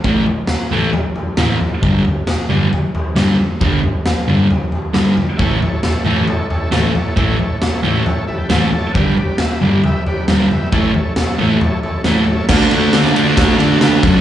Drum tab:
CC |--------|--------|--------|--------|
RD |--------|--------|--------|--------|
SD |--o---o-|--o---o-|--o---o-|--o---o-|
FT |oooooooo|oooooooo|oooooooo|oooooooo|
BD |o-------|o-------|o-------|o-------|

CC |--------|--------|--------|x-------|
RD |--------|--------|--------|-xxxxxxx|
SD |--o---o-|--o---o-|--o---o-|o-o-o-o-|
FT |oooooooo|oooooooo|oooooooo|--------|
BD |o-------|o-------|o-------|o---o--o|